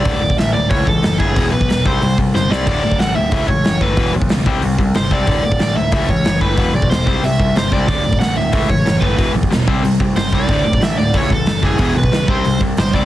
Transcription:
Already playing: D5
0.04 D1 D2 A2 D3, kick, open hi-hat
0.21 D1 D2 A2
0.30 kick
0.38 A1 D2 A2 E5, snare, open hi-hat
0.53 D1 D2 A2 D5
0.70 C#2 A2 E3 A3 C#5, kick, open hi-hat
0.86 C#2 A2 E3 A4, kick
1.03 F#1 A2 E3, snare, open hi-hat
1.19 G1 A2 E3 A3 G#4, kick
1.36 E1 E2 B2 E3, kick, open hi-hat
1.52 B1 E2 B2 B4
1.61 kick
1.69 E1 E2 B2, snare, open hi-hat
1.85 C2 C3 G3 C4 C5, kick
2.02 C2 C3 G3, open hi-hat
2.18 C2 C3 G3, kick
2.34 G1 C3 G3 C5, snare
2.50 C2 C3 G3 C4 D5, snare
2.67 D1 D2 A2 D3 D5, kick, open hi-hat, crash
2.83 D1 D2 A2
2.92 kick
2.99 A1 D2 A2 F#5, snare, open hi-hat
3.15 D1 D2 A2 E5
3.32 C#2 A2 E3 A3, kick, open hi-hat
3.48 C#2 A2 E3 C#5, kick
3.64 F#1 A2 E3, snare, open hi-hat
3.81 G1 A2 E3 A3 B4, kick
3.96 E1 E2 B2 E3, kick, open hi-hat
4.14 B1 E2 B2
4.21 kick
4.29 C#2 E2 B2, snare, open hi-hat
4.46 C2 C3 G3 C4, kick
4.62 C2 C3 G3, open hi-hat
4.78 C2 C3 G3, kick
4.94 G1 C3 G3 C5, snare, open hi-hat
5.10 C2 C3 G3 C4 D5, kick
5.27 D1 D2 A2 D3, kick, open hi-hat
5.43 D1 D2 A2
5.52 kick
5.59 A1 D2 A2 D5, snare, open hi-hat
5.76 D1 D2 A2 E5
5.92 C#2 A2 E3 A3 E5, kick, open hi-hat
6.08 C#2 A2 E3 C#5, kick
6.25 F#1 A2 E3, snare, open hi-hat
6.41 G1 A2 E3 A3 B4, kick
6.57 E1 E2 B2 E3, kick, open hi-hat
6.74 B1 E2 B2 D5
6.82 kick
6.90 E1 E2 B2 C5, snare, open hi-hat
7.06 C2 C3 G3 C4, kick
7.22 C2 C3 G3 E5, open hi-hat
7.39 C2 C3 G3, kick
7.56 G1 C3 G3 C5, snare, open hi-hat
7.71 C2 C3 G3 C4 D5, kick
7.88 D1 D2 A2 D3 D5, kick, open hi-hat
8.04 D1 D2 A2
8.13 kick
8.20 A1 D2 A2 F#5, snare, open hi-hat
8.36 D1 D2 A2 E5
8.52 C#2 A2 E3 A3, kick, open hi-hat
8.70 C#2 A2 E3 C#5, kick
8.85 F#1 A2 E3, snare, open hi-hat
9.00 G1 A2 E3 A3 B4, kick
9.18 E1 E2 B2 E3, kick, open hi-hat
9.34 B1 E2 B2
9.43 kick
9.50 E1 E2 B2, snare, open hi-hat
9.67 C2 C3 G3 C4, kick
9.83 C2 C3 G3, open hi-hat
10.00 C2 C3 G3, kick
10.16 G1 C3 G3 C5, snare, open hi-hat
10.32 C2 C3 G3 C4 D5, kick
10.49 D1 D2 A2 D3, kick, open hi-hat
10.64 D1 D2 A2
10.73 kick
10.81 A1 D2 A2 E5, snare, open hi-hat
10.97 D1 D2 A2 D5
11.14 C#2 A2 E3 A3 C#5, kick, open hi-hat
11.30 C#2 A2 E3 A4, kick
11.46 F#1 A2 E3, snare, open hi-hat
11.62 F#1 A2 E3 A3 G#4, kick
11.79 E1 E2 B2 E3, kick, open hi-hat
11.95 B1 E2 B2 B4
12.04 kick
12.12 C#2 E2 B2, snare, open hi-hat
12.28 C2 C3 G3 C4 C5, kick
12.45 C2 C3 G3, open hi-hat
12.61 C2 C3 G3, kick
12.77 G1 C3 G3 C5, snare, open hi-hat
12.93 C#2 C3 G3 C4 D5, kick

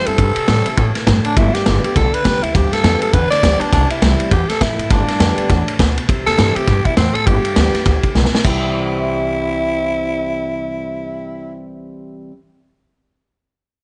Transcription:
Already playing: G2
0.06 G2 C4 E4 A4, ride
0.18 G2 C3, kick, ride
0.36 muted upright bass stroke, ride
0.48 A2 E3 G3 C4 E4, snare, ride
0.66 C4 E4, muted upright bass stroke, ride
0.77 A2 B2, kick, ride
0.95 muted upright bass stroke, snare, ride
1.07 G2 A2, kick, snare, ride
1.25 D4, muted upright bass stroke, ride
1.36 G1 G2 E4, kick, ride
1.54 G4, snare, ride
1.66 G1 D3 G3 B3 G4, snare, ride
1.84 B3 G4, muted upright bass stroke, ride
1.96 B1 D3 A4, kick, snare, ride
2.14 B4, muted upright bass stroke, ride
2.24 C2 D3 G3 B3 G4, kick, snare, ride
2.43 D2 B3 E4 G4, ride
2.55 D2 G2 G4, kick, snare, ride
2.72 A4, muted upright bass stroke, snare, ride
2.84 F2 D3 G3 B3 G4, snare, ride
3.01 B3 G4 A4, muted upright bass stroke, ride
3.13 E2 D3 B4, kick, ride
3.30 D5, muted upright bass stroke, snare, ride
3.43 D2 D3 G3 B3 G4, kick, snare, ride
3.61 B3 D4 G4, muted upright bass stroke, ride
3.73 C2 C3 D4, kick, snare, ride
3.90 E4, ride
4.02 C2 E3 G3 C4 E4, snare, ride
4.20 ride
4.31 E2 B2 G4, kick, ride
4.49 A4, snare, ride
4.61 F2 A2 E4, kick, snare, ride
4.78 G2, ride
4.90 G1 G2 D4, kick, snare, ride
5.08 muted upright bass stroke, snare, ride
5.20 F2 D3 G3 B3 G4, snare, ride
5.38 muted upright bass stroke, ride
5.50 E2 A2, kick, snare, ride
5.68 ride
5.79 D2 B2, kick, snare, ride
5.97 muted upright bass stroke, ride
6.09 C2 C3, kick, ride
6.26 E2 A4, snare, ride
6.37 G2 E3 G3 C4 E4, snare, ride
6.56 C4 E4 G4, muted upright bass stroke, ride
6.67 G2 B2, kick, snare, ride
6.85 E4, kick, ride
6.97 E2 A2 C4, snare, ride
7.15 A4, muted upright bass stroke, ride
7.27 G1 G2 G4, kick, ride
7.44 muted upright bass stroke, ride
7.56 D2 D3 G3 B3 G4, snare, ride
7.74 B3 G4, muted upright bass stroke, snare, ride
7.85 D2 A2, kick, snare, ride
8.03 muted upright bass stroke, kick, ride
8.15 B1 B2, snare
8.25 snare
8.32 muted upright bass stroke, snare
8.44 C2 C3 E3 G3 C4 E4, kick, crash

